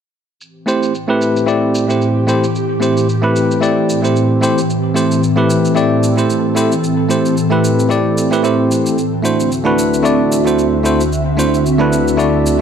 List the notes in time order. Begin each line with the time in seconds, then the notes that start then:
0.39 A2 E3 C4 G4, shaker
0.66 A3 C4 E4 G4 C5, shaker
0.83 shaker
0.95 shaker
1.08 A3 C4 E4 G4 B4
1.22 shaker
1.36 shaker
1.46 A3 C4 E4 G4 D5, shaker
1.75 shaker
1.88 A3 C4 E4 G4 C5, shaker
2.02 shaker
2.27 A3 C4 E4 G4 C5, shaker
2.44 shaker
2.55 shaker
2.80 A3 C4 E4 G4 C5, shaker
2.97 shaker
3.09 shaker
3.22 A3 C4 E4 G4 B4
3.36 shaker
3.51 shaker
3.60 A3 C4 E4 G4 D5, shaker
3.89 shaker
4.02 A3 C4 E4 G4 C5, shaker
4.16 shaker
4.41 A3 C4 E4 G4 C5, shaker
4.58 shaker
4.68 A4, shaker
4.94 A3 C4 E4 G4 C5, shaker
5.12 shaker
5.23 shaker
5.36 A3 C4 E4 G4 B4
5.50 shaker
5.65 shaker
5.75 A3 C4 E4 G4 D5, shaker
6.03 shaker
6.16 A3 C4 E4 G4 C5, shaker
6.30 shaker
6.55 A3 C4 E4 G4 C5, shaker
6.72 shaker
6.84 shaker
7.09 A3 C4 E4 G4 C5, shaker
7.26 shaker
7.37 shaker
7.50 A3 C4 E4 G4 B4
7.64 shaker
7.79 shaker
7.89 A3 C4 E4 G4 D5, shaker
8.18 shaker
8.31 A3 C4 E4 G4 B4, shaker
8.43 A3 C4 E4 G4 C5, shaker
8.71 shaker
8.86 shaker
8.97 D2 D3 F#4 E5, shaker
9.23 A3 D4 E4 F#4 C5, shaker
9.40 shaker
9.52 shaker
9.64 A3 D4 E4 F#4 B4
9.79 shaker
9.94 shaker
10.03 A3 D4 E4 F#4 D5, shaker
10.32 shaker
10.45 A3 D4 E4 F#4 C5, shaker
10.59 shaker
10.83 A3 D4 E4 F#4 C5, shaker
11.01 shaker
11.13 shaker
11.37 A3 D4 E4 F#4 C5, shaker
11.54 shaker
11.66 shaker
11.79 A3 D4 E4 F#4 B4
11.93 shaker
12.08 shaker
12.17 A3 D4 E4 F#4 D5, shaker
12.46 shaker